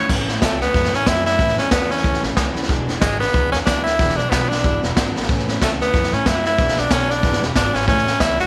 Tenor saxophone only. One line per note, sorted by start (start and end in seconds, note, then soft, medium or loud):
0.44 0.61 A3 medium
0.62 0.96 B3 loud
0.95 1.09 C#4 loud
1.07 1.25 E4 loud
1.26 1.56 E4 loud
1.59 1.71 C#4 medium
1.71 1.92 B3 loud
1.91 2.23 C#4 loud
3.01 3.19 G#3 medium
3.20 3.50 B3 loud
3.52 3.58 C#4 loud
3.65 3.83 D4 loud
3.83 4.17 E4 loud
4.16 4.31 D4 loud
4.30 4.50 B3 loud
4.48 4.82 D4 medium
5.63 5.72 A3 medium
5.82 6.15 B3 loud
6.13 6.28 C#4 medium
6.27 6.46 E4 loud
6.46 6.80 E4 loud
6.79 6.94 D4 medium
6.92 7.12 C#4 loud
7.10 7.42 D4 loud
7.56 7.76 D4 loud
7.74 7.88 C#4 loud
7.88 8.22 C#4 loud
8.20 8.39 E4 loud
8.40 8.47 F#4 loud